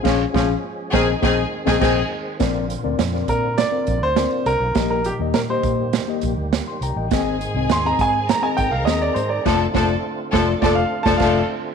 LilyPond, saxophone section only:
\new Staff \with { instrumentName = "Saxophone section" } { \time 4/4 \key bes \mixolydian \tempo 4 = 102 <f des'>8 <f des'>8 r8 <ees c' aes'>8 <ees c' aes'>8 r16 <ees c' aes'>16 <ees c' aes'>8 r8 | r1 | r1 | r1 |
<f d' a'>8 <f d' a'>8 r8 <f d' a'>8 <f d' a'>8 r16 <f d' a'>16 <f d' a'>8 r8 | }